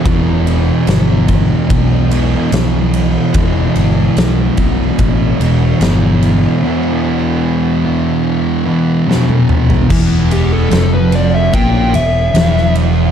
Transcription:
<<
  \new Staff \with { instrumentName = "Lead electric guitar" } { \time 4/4 \key e \phrygian \tempo 4 = 73 r1 | r1 | r1 | r8 g'16 a'8 b'16 d''16 e''16 g''8 e''4 r8 | }
  \new Staff \with { instrumentName = "Distorted electric guitar" } { \clef bass \time 4/4 \key e \phrygian <e, b, e>4. <e, b, e>4. <e, b, e>4 | <e, b, e>4. <e, b, e>4. <e, b, e>4 | <e, b, e>4. <e, b, e>4. <e, b, e>4 | <e, e>4 <f, f>4 <ais, ais>8 e,8 <e, e>4 | }
  \new Staff \with { instrumentName = "Distorted electric guitar" } { \clef bass \time 4/4 \key e \phrygian <e, b, e>2~ <e, b, e>8 <e, b, e>8 <e, b, e>4 | <e, b, e>2~ <e, b, e>8 <e, b, e>8 <e, b, e>4 | <e, b, e>2~ <e, b, e>8 <e, b, e>8 <e, b, e>4 | <e, e>4 <f, f>4 <ais, ais>8 e,8 <e, e>4 | }
  \new Staff \with { instrumentName = "Fingered electric bass" } { \clef bass \time 4/4 \key e \phrygian e,,4 g,,4 b,,4 b,,4 | e,,8 g,,8 b,,8 b,,8 a,,8 e,,8 g,,4 | r1 | e,,4 f,,4 ais,,8 e,,8 e,,4 | }
  \new DrumStaff \with { instrumentName = "Drums" } \drummode { \time 4/4 <bd cymr>8 cymr8 <cymr sn>8 <bd cymr>8 <bd cymr>8 cymr8 <cymr sn>8 cymr8 | <bd cymr>8 cymr8 <cymr sn>8 <bd cymr>8 <bd cymr>8 cymr8 <cymr sn>8 cymr8 | r4 r4 r4 sn16 tommh16 toml16 tomfh16 | <cymc bd>8 cymr8 <cymr sn>8 cymr8 <bd cymr>8 cymr8 <cymr sn>16 sn16 cymr8 | }
>>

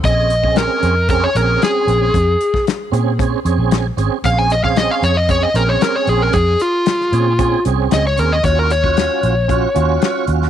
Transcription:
<<
  \new Staff \with { instrumentName = "Electric slide guitar" } { \time 4/4 \key bes \minor \tempo 4 = 114 ees''4 bes'4 bes'16 des''16 bes'8 aes'4~ | aes'4 r2. | f''16 aes''16 ees''16 f''16 ees''16 f''16 des''16 ees''16 des''16 ees''16 bes'16 des''16 bes'16 des''16 aes'16 bes'16 | aes'8 f'2 r8 ees''16 des''16 bes'16 ees''16 |
des''16 bes'16 des''2. r8 | }
  \new Staff \with { instrumentName = "Tonewheel organ" } { \time 4/4 \key bes \minor <c' des' aes'>8 r16 <c' des' aes'>4 r16 <c' des' aes'>8 <c' des' aes'>4. | r4. <c' des' aes'>8 <c' des' aes'>8 <c' des' aes'>8. r16 <c' des' aes'>8 | <c' des' aes'>8 r16 <c' des' aes'>4 r16 <c' des' aes'>8 <c' des' aes'>4. | r4. <c' des' aes'>8 <c' des' aes'>8 <c' des' aes'>8. r16 <c' des' aes'>8 |
<des' f' ges'>8 r16 <des' f' ges'>4 r16 <des' f' ges'>8 <des' f' ges'>4. | }
  \new Staff \with { instrumentName = "Fingered electric bass" } { \clef bass \time 4/4 \key bes \minor bes,,4. f,4 bes,,8 r8 bes,,8 | f,8 r4 bes,4 f,16 bes,,8. aes,,16 r16 | bes,,4. f,4 bes,,8 r8 bes,,8 | f,8 r4 bes,4 c,8 des,8 ees,8 |
ees,4. bes,,4 ees,8 r8 ees,8 | }
  \new DrumStaff \with { instrumentName = "Drums" } \drummode { \time 4/4 <hh bd>8 hh16 bd16 <hh sn>8 hh8 <hh bd>8 hh8 <hh sn>8 hh8 | <hh bd>8 hh16 <bd sn>16 <hh sn>8 hh8 <hh bd>8 hh8 <hh sn>8 hh8 | <hh bd>8 hh16 bd16 <hh sn>8 hh8 <hh bd>8 hh8 <hh sn>8 hh8 | <hh bd>8 hh8 <hh sn>16 sn16 hh8 <hh bd>8 hh8 <hh sn>8 hh8 |
<hh bd>8 hh16 bd16 <hh sn>8 hh8 <hh bd>8 hh8 <hh sn>8 hh16 sn16 | }
>>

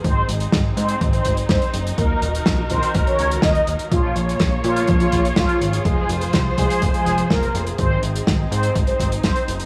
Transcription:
<<
  \new Staff \with { instrumentName = "Analog polysynth" } { \time 4/4 \key aes \mixolydian \tempo 4 = 124 c''8 r4 c''8 r16 c''8 r16 c''8. r16 | bes'8 r4 c''8 r16 des''8 r16 ees''8. r16 | f'8 r4 f'8 r16 f'8 r16 f'8. r16 | aes'8 r4 aes'8 r16 aes'8 r16 bes'8. r16 |
c''8 r4 c''8 r16 c''8 r16 c''8. r16 | }
  \new Staff \with { instrumentName = "String section" } { \time 4/4 \key aes \mixolydian << { r1 | <ees bes'>1 | <bes des''>1 | <f c''>1 |
r1 | } \\ { <c' ees' aes'>1 | ges'1 | <f' aes'>1~ | <f' aes'>1 |
<c' ees'>1 | } >> }
  \new Staff \with { instrumentName = "Analog synth bass" } { \clef bass \time 4/4 \key aes \mixolydian aes,,8 aes,,8 aes,,8 aes,8 aes,,8 aes,,8 ges,,8 ges,,8 | ees,,8 ees,,8 bes,,8 bes,,8 ees,,8 des,8 ees,,8 ees,,8 | bes,,8 bes,,8 bes,,8 bes,8 bes,,8 bes,,8 aes,,8 aes,,8 | f,,8 f,,8 c,8 c,8 f,,8 f,,8 f,,8 f,,8 |
aes,,8 aes,,8 aes,,8 aes,8 aes,,8 aes,,8 ges,,8 ges,,8 | }
  \new DrumStaff \with { instrumentName = "Drums" } \drummode { \time 4/4 <hh bd>8 hh16 hh16 <hh bd sn>8 hh16 hh16 <hh bd>16 hh16 <hh bd>16 hh16 <hh bd sn>16 hh16 hh16 hh16 | <hh bd>8 hh16 hh16 <hh bd sn>8 <hh bd>16 hh16 <hh bd>16 hh16 hh16 hh16 <hh bd sn>16 hh16 hh16 hh16 | <hh bd>8 hh16 hh16 <hh bd sn>8 hh16 hh16 <hh bd>16 hh16 <hh bd>16 hh16 <hh bd sn>16 hh16 hh16 hh16 | <hh bd>8 hh16 hh16 <hh bd sn>8 <hh bd>16 hh16 <hh bd>16 hh16 hh16 hh16 <hh bd sn>16 hh16 hh16 hh16 |
<hh bd>8 hh16 hh16 <hh bd sn>8 hh16 hh16 <hh bd>16 hh16 <hh bd>16 hh16 <hh bd sn>16 hh16 hh16 hh16 | }
>>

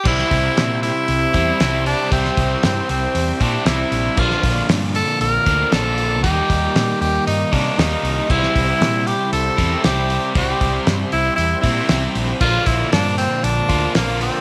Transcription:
<<
  \new Staff \with { instrumentName = "Tenor saxophone" } { \time 4/4 \key c \mixolydian \tempo 4 = 117 e'4. e'2 d'8 | c'4 c'8 c'4 d'8 e'4 | f'4 r8 a'8 bes'4 a'4 | g'4. g'8 ees'8 d'8 ees'4 |
e'4. g'8 a'4 g'4 | g'4 r8 e'8 e'8 e'4 r8 | f'8 e'8 d'8 c'8 d'4 bes8 c'8 | }
  \new Staff \with { instrumentName = "Tonewheel organ" } { \time 4/4 \key c \mixolydian <g c' e' c''>1~ | <g c' e' c''>1 | <f bes d' d''>1 | <g bes ees' bes'>1 |
<g c' e' c''>1~ | <g c' e' c''>1 | <f bes d' bes'>1 | }
  \new Staff \with { instrumentName = "Overdriven electric guitar" } { \clef bass \time 4/4 \key c \mixolydian <c g c' e'>2~ <c g c' e'>8 <c g c' e'>8 <c g c' e'>4 | <c g c' e'>2~ <c g c' e'>8 <c g c' e'>8 <c g c' e'>4 | <bes, d f bes d'>2~ <bes, d f bes d'>8 <bes, d f bes d'>8 <bes, d f bes d'>4 | <ees g bes ees'>2~ <ees g bes ees'>8 <ees g bes ees'>8 <ees g bes ees'>4 |
<c g c' e'>2~ <c g c' e'>8 <c g c' e'>8 <c g c' e'>4 | <c g c' e'>2~ <c g c' e'>8 <c g c' e'>8 <c g c' e'>4 | <bes, d f bes f'>2~ <bes, d f bes f'>8 <bes, d f bes f'>8 <bes, d f bes f'>4 | }
  \new Staff \with { instrumentName = "Fretless electric bass" } { \clef bass \time 4/4 \key c \mixolydian c,8 c,8 bes,4 c,8 e,8 c,4 | c,8 c,8 g,8 c,8 e,8 bes,8 c,8 bes,,8 | bes,,8 bes,,8 g,4 bes,,8 d,8 bes,,4 | ees,8 ees,8 bes,8 ees,8 g,8 c8 ees,8 c,8 |
c,8 c,8 bes,4 c,8 e,8 c,4 | c,8 c,8 g,8 c,8 e,8 bes,8 c,8 bes,,8 | bes,,8 bes,,8 g,4 bes,,8 d,8 bes,,4 | }
  \new DrumStaff \with { instrumentName = "Drums" } \drummode { \time 4/4 <cymc bd>16 sn16 <hho bd>8 <hho sn>8 hho8 hho8 <hho bd>8 <hho sn>8 hho8 | <hho bd>16 sn16 <hho bd>8 <hho sn>8 hho8 hho8 <hho bd>8 <hho sn>8 hho8 | <cymc bd>16 sn16 <hho bd>8 <hho sn>8 hho8 hho8 <hho bd>8 <hho sn>8 hho8 | <hho bd>8 <hho bd>8 <hho sn>8 hho8 hho8 <hho bd>8 <hho sn>8 hho8 |
<cymc bd>16 sn16 <hho bd>8 <hho sn>8 hho8 hho8 <hho bd>8 <hho sn>8 hho8 | <hho bd>8 <hho bd>8 <hho sn>8 hho8 hho8 <hho bd>8 <hho sn>8 hho8 | <cymc bd>8 <hho bd>8 <hho sn>8 hho8 hho8 <hho bd>8 <hho sn>8 hho8 | }
>>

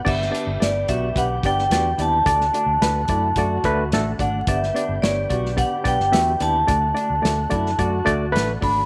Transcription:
<<
  \new Staff \with { instrumentName = "Vibraphone" } { \time 4/4 \key g \lydian \tempo 4 = 109 e''4 d''8 e''8 fis''8 g''4 a''8~ | a''2~ a''8 r4 fis''16. fis''32 | e''4 d''4 fis''8 g''4 a''8~ | a''2~ a''8 r4 b''8 | }
  \new Staff \with { instrumentName = "Clean electric guitar" } { \time 4/4 \key g \lydian r8 d'8 r8 fis'8 g'4 fis'8 e'8 | r8 d'8 r8 e'8 fis'4 r8 d'8 | r8 d'8 r8 fis'8 g'4 fis'8 e'8 | r8 d'8 r8 e'8 fis'4 r8 d'8 | }
  \new Staff \with { instrumentName = "Reed electric piano" } { \time 4/4 \key g \lydian <b d' g' d''>8 <b d' g' d''>8 <b d' g' d''>8 <b d' g' d''>8 <b d' g' b'>8 <b d' g' d''>8 <b d' g' d''>8 <b d' g' d''>8 | <a d' fis' d''>8 <a d' fis' d''>8 <a d' fis' b'>8 <a d' fis' d''>8 <a d' fis' d''>8 <a d' fis' b'>8 <a d' fis' a'>8 <a d' fis' d''>8 | <b d' g' d''>8 <b d' g' d''>8 <b d' g' cis''>8 <b d' g' d''>8 <b d' g' d''>8 <b d' g' d''>8 <b d' g' e''>8 <b d' g' d''>8 | <a d' fis' d''>8 <a d' fis' d''>8 <a d' fis' d''>8 <a d' fis' d''>8 <a d' fis' d''>8 <a d' fis' d''>8 <a d' fis' b'>8 <a d' fis' d''>8 | }
  \new Staff \with { instrumentName = "Tonewheel organ" } { \time 4/4 \key g \lydian <b g'>1 | <a fis'>1 | <b g'>1 | <a fis'>1 | }
  \new Staff \with { instrumentName = "Tonewheel organ" } { \clef bass \time 4/4 \key g \lydian d1~ | d1~ | d1 | d1 | }
  \new Staff \with { instrumentName = "Fingered electric bass" } { \clef bass \time 4/4 \key g \lydian g,,8 r16 g,,16 g,,8 b,,8 b,,8 g,,8 e,8 ees,8 | d,8 r16 d,16 d,8 fis,8 fis,8 d,8 a,,8 gis,,8 | g,,8 r16 g,,16 g,,8 b,,8. r16 b,,16 g,,16 e,8 ees,8 | d,8 r16 d,16 d,8 fis,8 fis,8 d,8 a,,8 gis,,8 | }
  \new DrumStaff \with { instrumentName = "Drums" } \drummode { \time 4/4 <cymc bd>16 sn16 hh8 <hh sn>8 <hh bd>8 <hh bd>8 <hh bd>16 sn16 <hh sn>8 hh8 | <hh bd>16 sn16 hh8 <hh sn>8 <hh bd>8 <hh bd>8 <hh bd>8 <hh sn>8 <hh bd>8 | <hh bd>16 sn16 hh8 <hh sn>8 <hh bd>16 sn16 <hh bd>8 <hh bd>16 sn16 <hh sn>8 hh8 | <hh bd>8 hh8 <hh sn>8 <hh bd>16 sn16 <hh bd>8 <hh bd>8 <hh sn>8 <hho bd>8 | }
>>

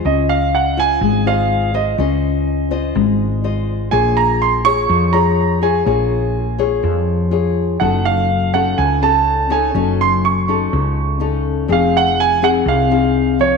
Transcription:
<<
  \new Staff \with { instrumentName = "Grand piano" } { \time 4/4 \key des \major \tempo 4 = 124 ees''8 f''8 ges''8 aes''4 f''4 ees''8~ | ees''4. r2 r8 | aes''8 bes''8 c'''8 des'''4 bes''4 aes''8~ | aes''4. r2 r8 |
ges''8 f''4 ges''8 aes''8 a''4 aes''8~ | aes''8 c'''8 des'''2~ des'''8 r8 | f''8 ges''8 aes''8 ges''8 f''4. des''8 | }
  \new Staff \with { instrumentName = "Nylon-string guitar" } { \time 4/4 \key des \major << { <f' bis' dis''>4 r8 <f' c'' ees''>4 <f' c'' ees''>4 <f' c'' ees''>8 | <f' c'' ees''>4. <f' c'' ees''>4. <f' c'' ees''>4 | <f' aes' des''>4. <f' aes' des''>4 <f' aes' des''>4 <f' aes' des''>8 | <f' aes' des''>4 r8 <f' aes' des''>4. <f' aes' des''>4 |
<des' ees' a'>4 r8 <des' ees' a'>4 <des' ees' a'>4 <des' ees' a'>8 | <des' ees' a'>4 r8 <des' ees' a'>4. <des' ees' a'>4 | <c' ees' aes'>4. <c' ees' aes'>4 <c' ees' aes'>4 <f ees'>8 | } \\ { des'2 aes2 | des'2 aes2 | bes2 f2 | bes2 f2 |
ges2 des2 | ges2 des2 | f2 c2 | } >> }
  \new Staff \with { instrumentName = "Fretless electric bass" } { \clef bass \time 4/4 \key des \major des,2 aes,,2 | des,2 aes,,2 | bes,,2 f,2 | bes,,2 f,2 |
ges,,2 des,2 | ges,,2 des,2 | f,,2 c,2 | }
>>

